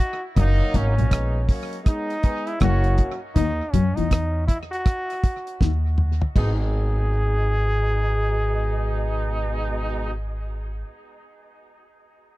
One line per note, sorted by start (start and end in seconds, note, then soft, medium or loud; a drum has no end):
0.00 0.25 F#4 loud
0.36 0.60 F#1 loud
0.36 0.51 F#2 loud
0.36 0.94 F#3 loud
0.36 0.94 A#3 loud
0.36 0.94 D#4 loud
0.36 0.77 D#4 loud
0.36 kick loud
0.36 closed hi-hat medium
0.74 0.97 G#1 loud
0.74 0.88 G#2 medium
0.74 1.50 C#4 loud
0.74 kick medium
0.74 closed hi-hat medium
0.96 1.47 A#1 loud
0.96 1.20 A#2 medium
0.96 1.08 F#3 medium
0.96 1.08 A#3 medium
0.96 1.08 C#4 medium
0.96 closed hi-hat medium
1.09 1.40 G#3 medium
1.09 1.40 B3 medium
1.09 1.40 D#4 medium
1.09 kick loud
1.09 closed hi-hat medium
1.13 cross-stick loud
1.47 1.78 F#3 medium
1.47 1.78 A#3 medium
1.47 1.78 C#4 medium
1.47 kick loud
1.47 open hi-hat medium
1.73 closed hi-hat medium
1.83 2.15 G#3 medium
1.83 2.15 B3 medium
1.83 2.15 D#4 medium
1.83 kick loud
1.83 cross-stick medium
1.83 closed hi-hat medium
1.88 2.50 D#4 loud
2.10 closed hi-hat soft
2.22 2.53 G#3 medium
2.22 2.53 B3 medium
2.22 2.53 D#4 loud
2.22 kick loud
2.22 closed hi-hat medium
2.47 2.61 E4 loud
2.47 closed hi-hat medium
2.60 2.97 F#1 loud
2.60 2.84 F#2 medium
2.60 3.18 F#3 loud
2.60 3.18 A#3 medium
2.60 3.18 C#4 loud
2.60 3.19 F#4 loud
2.60 kick loud
2.60 cross-stick loud
2.60 closed hi-hat medium
2.84 closed hi-hat medium
2.98 kick loud
2.98 closed hi-hat medium
3.35 3.59 D#2 loud
3.35 3.50 D#3 medium
3.35 3.73 D#4 loud
3.35 kick loud
3.35 closed hi-hat medium
3.72 3.97 F#2 medium
3.72 3.88 F#3 medium
3.72 3.97 C#4 medium
3.72 kick medium
3.72 closed hi-hat medium
3.95 4.47 E2 medium
3.95 4.20 E3 medium
3.95 4.47 D#4 medium
3.95 closed hi-hat medium
4.11 kick loud
4.11 cross-stick loud
4.11 closed hi-hat medium
4.47 4.58 E4 medium
4.47 kick loud
4.47 closed hi-hat medium
4.71 5.80 F#4 loud
4.71 closed hi-hat soft
4.86 kick loud
4.86 cross-stick medium
4.86 closed hi-hat medium
5.10 closed hi-hat soft
5.23 kick loud
5.23 closed hi-hat medium
5.47 closed hi-hat medium
5.61 6.20 D#2 medium
5.61 5.83 D#3 medium
5.61 kick loud
5.61 snare medium
5.98 mid tom medium
6.22 floor tom loud
6.35 10.81 G#1 loud
6.35 10.11 B2 medium
6.35 10.11 G#3 medium
6.35 10.11 D#4 medium
6.35 10.12 G#4 loud
6.35 kick loud
6.35 crash medium